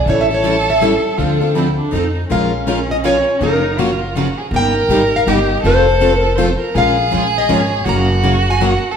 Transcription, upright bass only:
0.06 A1
1.18 D2
1.93 F2
2.31 A#1
3.41 F#1
4.51 G1
4.88 G#1
5.26 G1
5.64 F1
6.75 A#1
7.13 A#1
7.49 G#1
7.86 F#1

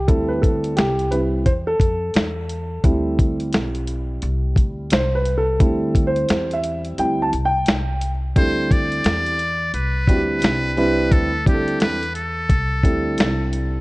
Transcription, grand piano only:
0.08 G3 C4 E4 A4
0.28 B4
0.42 A4
0.76 G4
1.11 G3 C4 E4 B4
1.46 C5
1.67 A4
2.84 G3 C4 E4
4.92 C5
5.15 B4
5.37 A4
5.59 G3 C4 E4
6.07 C5
6.53 E5
6.98 G3 C4 E4 G5
7.22 A5
7.45 G5
8.36 G3 C4 D4 E4 A4
10.08 G3 C4 D4 E4 F#4
10.16 G4
10.77 G3 C4 D4 E4 B4
11.46 G3 C4 D4 E4 G4
11.54 A4
12.83 G3 C4 D4 E4 A4

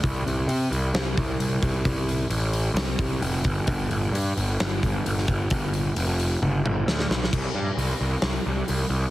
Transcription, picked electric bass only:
0.03 C2
0.26 C2
0.47 C3
0.71 C2
0.94 C2
1.18 C2
1.40 C2
1.62 C2
1.85 C2
2.30 A1
2.74 C2
2.99 C2
3.21 F1
3.45 G1
3.67 G1
3.90 G1
4.12 G2
4.37 G1
4.60 G1
4.83 G1
5.06 G1
5.29 G1
5.51 G1
5.97 F1
6.42 G1
6.64 G1
6.86 D2
7.09 B1
7.33 C2
7.54 G2
7.77 C2
8.01 C2
8.23 C2
8.46 C2
8.69 C2
8.89 C2

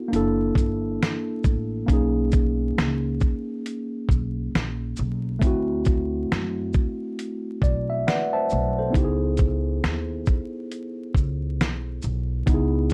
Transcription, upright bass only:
0.13 F#1
0.56 G1
1.45 A1
1.89 B1
2.78 C#2
4.09 B1
4.55 A#1
4.99 B1
5.42 D2
6.32 F#2
7.63 B1
8.52 B1
8.95 C#2
9.84 D#2
11.15 C#2
11.60 B1
12.04 B1
12.47 C#2

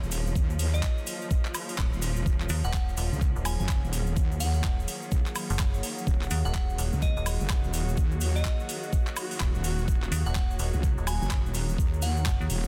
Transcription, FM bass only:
2.50 D#2
2.64 D#1
2.97 D#1
3.36 D#1
4.64 D#1
5.50 F#1
6.31 D#2
6.45 D#1
6.78 D#1
7.17 D#1
10.12 D#2
10.26 D#1
10.59 D#1
10.98 D#1
12.26 F#1
12.41 D#2

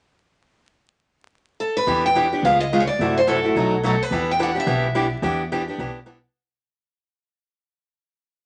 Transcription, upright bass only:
1.87 E2
2.43 C#2
2.99 F#2
3.55 B1
4.11 E2
4.67 B1
5.22 E2
5.78 B1

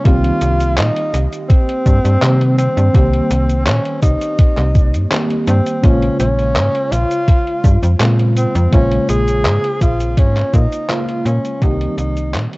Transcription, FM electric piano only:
0.04 D#3 G3 A#3 C4 G4
2.21 D#3 G3 A#3 C4 G4
2.93 D#3 G3 A#3 G4 C5
5.10 D#3 G3 A#3 C4 G4
5.82 C#3 G#3 A#3 F4 C5
7.99 C#3 G#3 A#3 C4 F4
8.71 C#3 G#3 A#3 F4 C5
10.88 C#3 G#3 A#3 F4 C5
11.60 D#3 G3 A#3 C4 G4

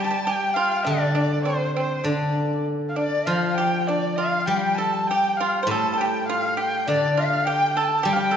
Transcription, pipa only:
0.04 G4
0.11 G4
0.27 G4
0.56 F4
0.85 D4
1.15 D4
1.45 C4
1.76 C4
2.04 D4
2.96 D4
3.27 F4
3.58 G4
3.88 D4
4.18 F4
4.48 G4
4.78 A4
5.11 G4
5.40 F4
5.63 C5
5.71 A4
5.94 A4
6.01 G4
6.29 F4
6.57 G4
6.89 D4
7.17 F4
7.47 G4
7.77 A4
8.03 G4
8.16 G4
8.31 A4

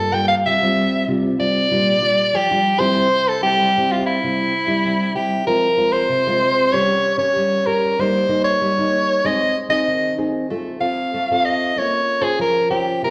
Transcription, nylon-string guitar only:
Already playing: G2
0.13 G3 A#3 F4
0.46 C3 G3 C4 F4
0.63 G3 C4 F4
1.08 C3 G3 C4 F4
1.38 G3 C4 F4
1.71 A#2 G3 D4 F4
2.01 G3 D4 F4
2.34 F3
2.51 G3 D4 F4
2.80 G3 C4 E4
2.97 C3
3.41 G3 C4 E4
3.60 G3
3.77 G3 C4 E4
4.23 C3 G3 C4 E4
4.67 G3 C4 E4
4.85 G3
5.15 G3 C4 E4
5.47 F3 G#3 C4 F4
5.77 G#3 C4 F4
6.09 C3
6.27 G#3 C4 F4
6.73 G3 C#4 G4 A#4
7.18 C#4 G4 A#4
7.36 G3
7.66 C#4 G4 A#4
7.99 G3 A#3 D#4 A#4
8.29 A#3 D#4 A#4
8.61 G3
8.78 A#3 D#4 A#4
9.25 G#3 C4 D#4 G#4
9.69 C4 D#4 G#4
9.88 D#3
10.18 C4 D#4 G#4
10.50 A3 C4 F4 A4
10.80 C4 F4 A4
11.14 A3
11.31 C4 F4 A4
11.77 A#3 C#4 F4
12.21 C#4 F4 C5
12.39 F3
12.70 C#4 F4 C5
13.02 C3 A#3 E4 G4

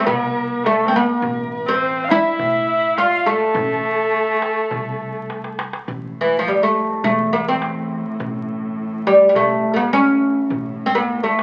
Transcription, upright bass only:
0.07 C2
1.22 A1
2.39 A2
3.54 A1
4.72 C2
5.88 A1
7.04 E2
8.20 A1
9.36 A1
10.50 A1

